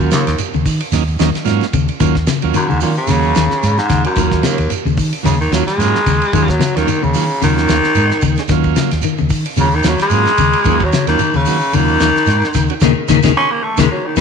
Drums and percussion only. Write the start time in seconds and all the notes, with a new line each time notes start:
0.00 shekere
0.11 snare, ride bell, shekere
0.27 snare, ride bell, shekere
0.38 ride bell, shekere
0.54 shekere
0.66 kick, open hi-hat, shekere
0.80 ride bell, shekere
0.92 snare, ride bell, shekere
1.07 shekere
1.19 snare, ride bell, shekere
1.34 snare, ride bell, shekere
1.45 snare, ride bell, shekere
1.61 snare, shekere
1.73 kick, ride bell, shekere
1.88 ride bell, shekere
2.00 kick, snare, ride bell, shekere
2.15 kick, snare, shekere
2.27 snare, ride bell, shekere
2.42 ride bell, shekere
2.54 ride bell, shekere
2.70 shekere
2.81 open hi-hat, shekere
2.96 shekere
3.07 snare, ride bell, shekere
3.22 shekere
3.35 snare, ride bell, shekere
3.51 snare, shekere
3.63 snare, ride bell, shekere
3.78 snare, shekere
3.90 kick, snare, ride bell, shekere
4.04 ride bell, shekere
4.15 kick, snare, ride bell, shekere
4.31 kick, snare, shekere
4.43 snare, ride bell, shekere
4.58 ride bell, shekere
4.70 ride bell, shekere
4.87 shekere
4.97 kick, open hi-hat, shekere
5.13 ride bell, shekere
5.25 snare, ride bell, shekere
5.42 shekere
5.52 snare, ride bell, shekere
5.68 snare, ride bell, shekere
5.80 snare, ride bell, shekere
5.95 snare, shekere
6.06 kick, ride bell, shekere
6.22 ride bell, shekere
6.33 kick, ride bell, shekere
6.48 kick, snare, shekere
6.60 snare, ride bell, shekere
6.77 snare, ride bell, shekere
6.88 ride bell, shekere
7.03 shekere
7.14 open hi-hat, shekere
7.30 shekere
7.42 snare, ride bell, shekere
7.58 snare, shekere
7.69 snare, ride bell, shekere
7.83 snare, shekere
7.95 ride bell, shekere
8.10 snare, shekere
8.21 kick, ride bell, shekere
8.36 snare, ride bell, shekere
8.48 kick, snare, ride bell, shekere
8.63 kick, shekere
8.76 snare, ride bell, shekere
8.91 snare, ride bell, shekere
9.02 ride bell, shekere
9.18 shekere
9.30 kick, open hi-hat, shekere
9.45 ride bell, shekere
9.57 ride bell, shekere
9.72 shekere
9.83 snare, ride bell, shekere
9.98 snare, ride bell, shekere
10.10 ride bell, shekere
10.25 snare, shekere
10.37 kick, ride bell, shekere
10.53 ride bell, shekere
10.65 kick, ride bell, shekere
10.79 kick, shekere
10.92 snare, ride bell, shekere
11.07 snare, ride bell, shekere
11.19 ride bell, shekere
11.34 shekere
11.45 open hi-hat, shekere
11.61 shekere
11.73 ride bell, shekere
11.88 shekere
12.00 snare, ride bell, shekere
12.15 snare, shekere
12.26 snare, ride bell, shekere
12.41 snare, shekere
12.54 kick, snare, ride bell, shekere
12.68 ride bell, shekere
12.81 kick, snare, shekere
13.08 kick, snare, shekere
13.23 kick, snare, shekere
13.77 kick, snare, shekere
14.16 kick, snare, shekere